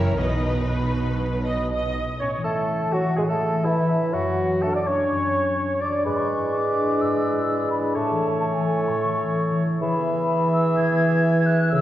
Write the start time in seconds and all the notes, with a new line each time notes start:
Already playing: F#1 F#2 C#4 E4 F#4 A#4 C#5
0.18 B1 B2 D#4 B4 D#5
0.44 B3
0.69 F#4 B4
0.94 D#4
1.20 F#3
1.44 B3 D#5
1.70 F#4 D#5
1.95 D#4
2.20 A2 C#4 C#5 C#6
2.37 E3
2.44 A3 A4 A5
2.53 E4
2.69 C#4
2.85 E3
2.92 F#3 F#4 F#5
3.01 E4
3.16 A2 G#3 G#4 G#5
3.28 A3 A4 A5
3.33 E3
3.49 E4
3.65 E3 C#4 E4 E5
3.81 E3
3.97 E4
4.13 F#2 F#3 F#4 F#5
4.30 F#3
4.62 A3 D4 A4 A5
4.74 D4 D5 D6
4.79 F#3
4.86 C#4 C#5 C#6
4.95 F#4
5.11 F#2
5.27 F#3
5.42 F#4
5.58 D4
5.81 D4 D5 D6
5.90 F#4
6.05 G#2 G#3 B4 D5 B5
6.17 G#3 C#6
6.37 E4
6.53 D4 D6
6.69 G#3
6.85 E4
7.01 G#2 E6
7.17 G#3
7.32 E4
7.48 D4
7.64 G#3
7.72 B5
7.79 E4
7.94 A2 A3 A4 C#5 A5
8.10 E3
8.26 E4
8.41 C#4 A5
8.53 E3 G#5
8.73 E4
8.88 A2 C#6
9.04 E3
9.20 E4
9.35 C#4
9.51 E3
9.67 E4
9.81 E3 G#4 E5 B5
9.98 B3
10.14 G#4
10.29 E4
10.45 B3
10.53 E6
10.61 G#4
10.77 E3 G#6
10.93 B3
11.08 G#4
11.24 E4
11.40 B3
11.48 F#6
11.56 G#4
11.72 C#3 A4 E6